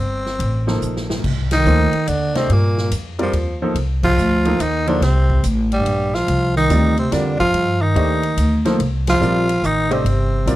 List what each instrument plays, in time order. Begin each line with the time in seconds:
Already playing: upright bass G1, tenor saxophone C4
0.26 snare
0.39 upright bass A1, ride
0.67 grand piano F3 A#3 D#4 A4 C5, snare
0.81 upright bass A#1, hi-hat pedal
0.96 snare
1.10 snare
1.24 upright bass C2, kick, crash
1.51 bass clarinet D#3, tenor saxophone D#4, snare, ride
1.65 upright bass D2, grand piano F3 A#3 D#4 A4 C5, hi-hat pedal
1.93 muted upright bass stroke, ride
2.07 upright bass D#2, bass clarinet D3, tenor saxophone D4, hi-hat pedal, ride
2.34 bass clarinet C3, grand piano A3 D4 G4 C5 D#5, tenor saxophone C4, snare, ride
2.49 upright bass G2, bass clarinet A#2, tenor saxophone A#3, ride
2.78 snare
2.91 upright bass F2, hi-hat pedal, ride
3.19 bass clarinet F2, tenor saxophone F3, grand piano G3 C4 F4 A#4 D5, ride
3.32 upright bass D#2, ride
3.62 grand piano F3 A#3 D#4 A4 C5
3.74 upright bass C2, ride
4.03 bass clarinet F3, tenor saxophone F4, kick, crash
4.17 upright bass D2, hi-hat pedal
4.45 grand piano F3 A#3 D#4 A4 C5, ride
4.59 upright bass D#2, bass clarinet D#3, tenor saxophone D#4, hi-hat pedal, ride
4.87 bass clarinet D3, grand piano F3 A#3 D#4 A4 C5, tenor saxophone D4, ride
5.01 upright bass C2, bass clarinet C3, tenor saxophone C4, snare, ride
5.30 kick
5.43 upright bass A1, hi-hat pedal, ride
5.72 bass clarinet G2, tenor saxophone G3, ride
5.85 upright bass A#1, ride
6.13 bass clarinet F3, tenor saxophone F4, snare
6.28 upright bass C2, ride
6.56 bass clarinet D#3, tenor saxophone D#4, snare
6.69 upright bass D2, grand piano G3 C4 F4 A#4 D5, hi-hat pedal, ride
6.97 bass clarinet C3, tenor saxophone C4, ride
7.11 upright bass F2, bass clarinet D3, grand piano G3 C4 F4 A#4 D5, tenor saxophone D4, snare, hi-hat pedal, ride
7.39 bass clarinet F3, tenor saxophone F4, kick, ride
7.53 upright bass G2, ride
7.81 bass clarinet D#3, tenor saxophone D#4
7.95 upright bass D#2, grand piano A3 D4 G4 C5 D#5, ride
8.23 ride
8.37 upright bass D2, hi-hat pedal, ride
8.65 grand piano F3 A#3 D#4 A4 C5, snare, ride
8.79 upright bass C2, ride
9.07 bass clarinet F3, tenor saxophone F4, snare, ride
9.20 upright bass A#1, grand piano G3 C4 F4 A#4 D5, hi-hat pedal
9.49 ride
9.63 upright bass A1, bass clarinet D#3, tenor saxophone D#4, hi-hat pedal
9.89 bass clarinet C3, grand piano A3 D4 G4 C5 D#5, tenor saxophone C4, ride
10.04 upright bass G1, ride
10.46 upright bass A#1, grand piano G3 C4 F4 A#4 D5, hi-hat pedal, ride